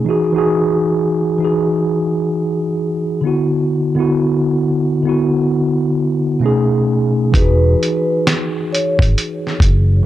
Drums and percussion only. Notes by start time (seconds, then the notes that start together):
7.34 kick, closed hi-hat
7.83 closed hi-hat
8.27 snare, closed hi-hat
8.75 closed hi-hat
8.99 kick, closed hi-hat
9.18 closed hi-hat
9.47 snare
9.60 kick, closed hi-hat